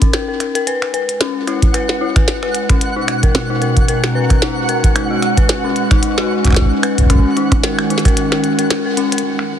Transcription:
Already playing: synth bell C#4 D#4 A#4
0.02 synth bell C#4, kick, closed hi-hat
0.13 synth bell A#4, finger snap, snare, closed hi-hat
0.28 synth bell A#4
0.40 finger snap, closed hi-hat
0.55 synth bell A#4, closed hi-hat
0.67 ambient pad G#3, synth bell B4, synth texture F#5, closed hi-hat
0.82 finger snap
0.94 ambient pad F#4, synth bell B4, closed hi-hat
1.09 closed hi-hat
1.21 synth bell C#4, finger snap, snare, closed hi-hat
1.44 ambient pad C#4, synth bell E4, finger snap, closed hi-hat
1.62 ambient pad B4, kick, closed hi-hat
1.74 synth bell B4, finger snap, closed hi-hat
1.89 snare
2.01 synth bell E4
2.16 synth bell B4, finger snap, kick, closed hi-hat
2.28 snare, closed hi-hat
2.43 synth bell B4, finger snap
2.55 closed hi-hat
2.69 synth bell C#4, finger snap, kick, closed hi-hat
2.81 ambient pad B2, closed hi-hat
2.96 synth bell D#4
3.08 finger snap, closed hi-hat
3.23 synth bell A#4, kick, closed hi-hat
3.35 finger snap, snare, closed hi-hat, percussion blips
3.50 synth bell D#4
3.62 synth bell A#4, closed hi-hat
3.77 ambient pad A#5, kick, closed hi-hat
3.88 synth bell A#4, closed hi-hat
4.04 finger snap, snare
4.15 synth bell B4
4.30 finger snap, kick, closed hi-hat
4.42 synth bell D#4, snare, closed hi-hat
4.69 synth bell A#4, closed hi-hat
4.84 kick, closed hi-hat
4.96 synth bell D#4, finger snap, closed hi-hat
5.11 synth bell F#4
5.22 finger snap, closed hi-hat
5.37 synth bell B4, kick, closed hi-hat
5.49 finger snap, snare, closed hi-hat
5.64 synth bell C#4
5.71 ambient pad B4
5.76 closed hi-hat
5.91 synth bell D#4, finger snap, kick, closed hi-hat
6.03 closed hi-hat
6.18 synth bell F#4, finger snap, snare
6.45 synth bell D#4, finger snap, kick, closed hi-hat
6.47 finger snap, kick
6.50 finger snap, kick
6.52 finger snap
6.54 synth bell F#4, finger snap, kick, snare, closed hi-hat
6.61 kick
6.65 kick
6.83 synth bell B4, finger snap, closed hi-hat
6.98 kick, closed hi-hat
7.01 kick
7.06 kick
7.10 ambient pad D#3, synth bell C#4, finger snap, kick, closed hi-hat
7.15 kick
7.19 kick
7.37 synth bell D#4, closed hi-hat
7.52 kick, closed hi-hat, percussion blips
7.63 synth bell A#4, snare, closed hi-hat
7.79 finger snap
7.90 synth bell D#4, closed hi-hat
7.98 snare, closed hi-hat
8.05 synth bell A#4, ambient pad A#4, finger snap, kick, closed hi-hat
8.08 closed hi-hat
8.17 closed hi-hat
8.32 synth bell A#4, finger snap, snare
8.44 closed hi-hat
8.59 synth bell A#4, closed hi-hat
8.70 finger snap, snare, closed hi-hat
8.85 synth bell A#4
8.97 synth bell C#4, closed hi-hat
9.12 synth bell A#4, closed hi-hat
9.18 closed hi-hat
9.39 finger snap

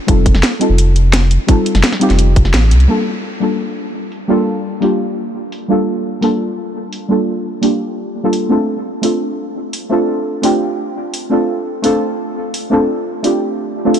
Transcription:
Already playing: synth stab A3 C4 D4 F4 A4
0.07 sub bass F1, synth stab G3 C4 D#4 F4 A4, kick, closed hi-hat
0.26 kick, closed hi-hat
0.35 sub bass F1, snare
0.43 snare, closed hi-hat
0.59 synth stab G3 C4 D#4 F4 A4, closed hi-hat
0.70 sub bass F1
0.78 closed hi-hat
0.96 closed hi-hat
1.13 snare, closed hi-hat
1.31 closed hi-hat
1.47 synth stab G3 C4 D#4 F4 A4, kick, closed hi-hat
1.66 closed hi-hat
1.75 sub bass F1, snare, closed hi-hat
1.84 snare, closed hi-hat
1.92 snare
2.00 synth stab G3 C4 D#4 F4 G4, closed hi-hat
2.10 sub bass F1, snare, closed hi-hat
2.19 closed hi-hat
2.36 kick, closed hi-hat
2.45 snare
2.54 sub bass A1, snare, closed hi-hat
2.71 sub bass C2, closed hi-hat
2.80 closed hi-hat
2.88 synth stab G3 A#3 D4 F4 A4
3.40 synth stab G3 A#3 D4 F4 A4, open hi-hat
4.12 open hi-hat
4.28 synth stab G3 A#3 D4 F4 A4
4.81 synth stab G3 A#3 D4 F4 G4, open hi-hat
5.52 open hi-hat
5.68 synth stab G3 A#3 D4 F4 A4
6.21 synth stab G3 A#3 D4 F4 A4, open hi-hat
6.93 open hi-hat
7.08 synth stab G3 A#3 D4 F4 A4
7.61 synth stab G3 A#3 D4 F4 G4, open hi-hat
8.23 synth stab G3 A#3 D4 F4 A4
8.33 open hi-hat
8.49 synth stab A3 C4 D4 F4 A4
9.02 synth stab A3 C4 D4 F4 A4, open hi-hat
9.73 open hi-hat
9.89 synth stab A3 C4 D4 F4 A4
10.42 synth stab A3 C4 D4 F4 G4, open hi-hat
11.14 open hi-hat
11.30 synth stab A3 C4 D4 F4 A4
11.82 synth stab A3 C4 D4 F4 A4, open hi-hat
12.54 open hi-hat
12.70 synth stab A3 C4 D4 F4 A4
13.23 synth stab A3 C4 D4 F4 G4, open hi-hat
13.85 synth stab A3 C4 D4 F4 A4
13.94 open hi-hat

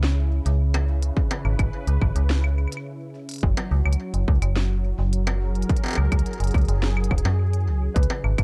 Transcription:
Already playing: fm bass C#2, analog synth pad C#3 C#4 E4
0.03 snare
0.46 fm bass C#2, closed hi-hat
0.74 closed hi-hat, struck metal, claves
0.94 analog synth pad B4
1.03 closed hi-hat
1.17 kick
1.31 closed hi-hat, struck metal
1.45 fm bass G#1, claves
1.59 fm bass G#1, kick, closed hi-hat, claves
1.87 fm bass C#2, closed hi-hat
2.02 fm bass G#1, kick, claves
2.16 fm bass C#2, closed hi-hat
2.30 snare
2.44 claves
2.58 claves
2.68 claves
2.72 closed hi-hat
2.77 claves
3.29 closed hi-hat
3.31 closed hi-hat
3.34 closed hi-hat
3.36 closed hi-hat
3.38 closed hi-hat
3.41 fm bass F#1, analog synth pad F#3, kick, closed hi-hat
3.57 closed hi-hat, struck metal
3.71 fm bass C#2
3.85 fm bass C#2, claves
3.93 closed hi-hat
4.14 fm bass F#1, closed hi-hat
4.28 fm bass C#2, kick
4.42 fm bass F#1, closed hi-hat, claves
4.56 snare
4.99 fm bass F#1
5.12 analog synth pad A#4, closed hi-hat
5.27 closed hi-hat, struck metal, claves
5.37 analog synth pad G#4
5.55 closed hi-hat
5.62 closed hi-hat
5.69 kick, closed hi-hat
5.77 closed hi-hat
5.84 closed hi-hat, struck metal
5.86 closed hi-hat, struck metal
5.88 closed hi-hat, struck metal
5.91 closed hi-hat, struck metal
5.93 closed hi-hat, struck metal
5.95 fm bass C#2, closed hi-hat, struck metal, claves
6.12 fm bass C#2, kick, closed hi-hat, claves
6.19 closed hi-hat
6.26 closed hi-hat
6.33 closed hi-hat
6.40 fm bass F#1, closed hi-hat
6.44 closed hi-hat
6.47 closed hi-hat
6.51 fm bass C#2, kick, closed hi-hat
6.54 closed hi-hat, claves
6.58 closed hi-hat
6.61 closed hi-hat
6.65 fm bass F#1, closed hi-hat
6.69 closed hi-hat
6.83 snare
6.97 claves
7.04 closed hi-hat
7.11 fm bass E1, kick, claves
7.18 closed hi-hat
7.25 fm bass F#2, struck metal
7.53 closed hi-hat
7.68 fm bass C#2
7.94 fm bass C#2, analog synth pad C#3, felt piano B4, kick, closed hi-hat
8.03 closed hi-hat
8.10 struck metal
8.24 fm bass G#1, claves
8.38 fm bass G#1, kick, closed hi-hat, claves

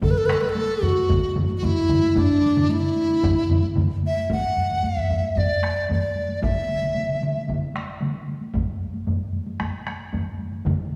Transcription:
0.02 dizi A4, taiko, taiko low-mid, taiko mid, taiko high
0.11 dizi B4
0.18 dizi A4
0.26 dizi B4, taiko rim, taiko high
0.33 dizi A4
0.41 dizi B4, taiko high
0.49 dizi A4
0.55 taiko high
0.81 dizi F#4, taiko low-mid, taiko mid, taiko high
0.96 taiko high
1.09 taiko, taiko low-mid, taiko mid, taiko high
1.35 taiko low-mid, taiko mid, taiko high
1.48 taiko high
1.57 dizi F#4
1.63 dizi E4, taiko low-mid, taiko mid, taiko high
1.89 taiko low-mid, taiko mid, taiko high
2.02 taiko high
2.15 dizi D4, taiko, taiko low-mid, taiko mid, taiko high
2.42 taiko high
2.56 taiko low-mid, taiko mid, taiko high
2.69 dizi E4, taiko high
2.96 taiko high
3.10 taiko high
3.23 taiko, taiko low-mid, taiko mid, taiko high
3.49 taiko low-mid, taiko mid, taiko high
3.63 taiko high
3.76 taiko low-mid, taiko mid, taiko high
4.03 dizi E5, taiko high
4.16 taiko high
4.30 dizi F#5, taiko, taiko low-mid, taiko high
4.57 taiko low-mid, taiko high
4.70 taiko low-mid, taiko high
4.83 dizi E5, taiko low-mid, taiko high
4.97 taiko low-mid
5.10 taiko low-mid, taiko high
5.23 taiko high
5.36 dizi D5, taiko, taiko low-mid, taiko high
5.62 taiko rim, taiko high
5.89 dizi D5, taiko low-mid, taiko high
6.16 taiko high
6.29 taiko high
6.42 dizi E5, taiko, taiko mid, taiko high
6.68 taiko mid, taiko high
6.82 taiko mid, taiko high
6.95 taiko mid, taiko high
7.10 taiko mid
7.21 taiko mid, taiko high
7.34 taiko high
7.48 taiko, taiko mid, taiko high
7.74 taiko rim, taiko high
8.01 taiko mid, taiko high
8.28 taiko high
8.41 taiko high
8.54 taiko, taiko low-mid, taiko high
8.81 taiko high
8.94 taiko high
9.07 taiko low-mid, taiko high
9.33 taiko high
9.47 taiko high
9.60 taiko rim, taiko, taiko high
9.86 taiko rim, taiko high
10.13 taiko low-mid, taiko high
10.39 taiko high
10.52 taiko high
10.65 taiko, taiko low-mid, taiko mid, taiko high

